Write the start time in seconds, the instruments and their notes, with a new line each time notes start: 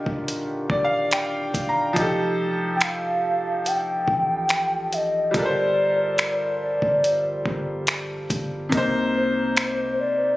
Already playing: grand piano D3 D#3 F4 G4, soft synth lead D#5
0.06 808-style bass D#1, kick
0.28 closed hi-hat
0.70 808-style bass D#1, grand piano D5, kick
0.85 grand piano F5
1.11 grand piano G5, finger snap, closed hi-hat
1.54 808-style bass D#1, kick, closed hi-hat
1.69 grand piano A#5
1.93 808-style bass F1, grand piano F3 D#4, kick, closed hi-hat
1.99 grand piano G4 A4
2.75 soft synth lead G5
2.81 soft synth lead F5, finger snap, closed hi-hat
3.66 soft synth lead G5, closed hi-hat
4.08 808-style bass A1, kick
4.49 finger snap, closed hi-hat
4.92 soft synth lead D#5, closed hi-hat
5.31 808-style bass G1, grand piano G3 F4, kick, closed hi-hat
5.35 grand piano A4 A#4 B4, soft synth lead D5
5.45 grand piano C5
6.18 finger snap, closed hi-hat
6.63 soft synth lead D5
6.82 808-style bass G1, kick
7.04 closed hi-hat
7.46 808-style bass G1, kick
7.87 finger snap, closed hi-hat
8.30 808-style bass G1, kick, closed hi-hat
8.69 808-style bass C2, grand piano C3 A#3, kick, closed hi-hat
8.75 grand piano D#4 C5
9.16 soft synth lead C5
9.57 finger snap, closed hi-hat
10.00 soft synth lead D5